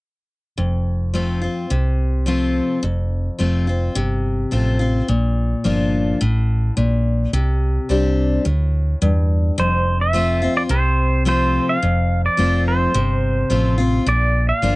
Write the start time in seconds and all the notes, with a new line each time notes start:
0.58 F1 F2
1.14 F3 A3 C4 F4
1.42 C4 F4
1.70 C2 C3
2.26 F3 A3 C4 F4
2.83 F1 F2
3.39 F1 F3 A3 C4 F4
3.67 C4 F4
3.95 G1 C3
4.51 A1 F3 A3 C4 F4
4.79 C4 F4
5.08 A#1 A#2
5.64 G1 F3 A#3 D4 F4
6.21 A1 A2
6.77 A#1 A#2
7.33 C2 C3
7.89 C2 G3 C4 D4 G4
8.45 D2 A2
9.02 E2 G2
9.58 F1 F2 C5
10.01 E5
10.13 F3 A3 C4 F4
10.42 C4 F4
10.57 D5
10.69 C2 C3 C5
11.25 F3 A3 C4 F4 C5
11.69 F5
11.83 F1 F2
12.26 D5
12.37 F1 F3 A3 C4 F4
12.68 C5
12.94 G1 C3
13.50 A1 F3 A3 C4 F4
13.78 C4 F4
14.06 A#1 A#2 D5
14.49 F5
14.62 G1 F3 A#3 D4 F4